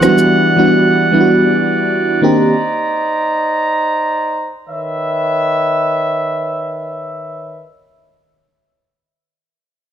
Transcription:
Already playing: E3 F#5
0.01 E3 F#3 G3 B3 D4 F#4 D5, cross-stick, shaker
0.08 G3
0.18 shaker
0.56 E3 G3 B3 D4 F#4
1.12 E3 G3 B3 D4 E4
1.21 F#4
2.22 D#3 A#3 C4 D4 D#4 G4 C5 A#5
4.70 D#3 B4 C#5 E5

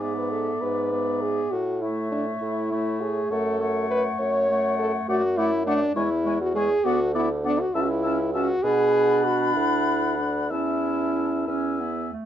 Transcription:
Already playing: G#2 G#4
0.01 B3 D5 E5
0.17 B4
0.32 A4
0.62 G#2 B4
0.91 B3 D5 E5
1.22 G#4
1.51 A2 F#4
1.82 A3 E4 C#5 E5
2.12 D4
2.42 A2 E4
2.71 A3 C#5 E5
3.01 G#4
3.30 F#2 A3 A4 C#5 F#5
3.60 A3 C#5 F#5
3.90 B4
4.20 F#2 C#5
4.49 A3 C#5 F#5
4.79 A4
5.08 F#2 A3 F#4 D5 F#5
5.38 A3 E4 D5 F#5
5.66 A3 D4 D5 F#5
5.96 E2 G#3 E4 C#5 G#5
6.25 G#3 C#5 G#5
6.42 F#4
6.55 G#3 G#4 C#5 G#5
6.85 D2 B3 F#4 D5 F#5
7.15 B3 E4 D5 F#5
7.45 B3 D4 D5 F#5
7.60 F#4
7.74 C#2 C#4 E4 E5 A5
7.81 F#4
7.88 E4
8.03 C#4 E5 A5
8.34 C#4 F#4 E5 A5
8.63 B2 D4 G#4 F#5 B5
9.25 F#4
9.55 D2 E4
10.18 D4
10.50 E2 C#4 E4 E5 A5
11.47 E2 C#4 E5 G#5
11.80 B3
12.12 A3

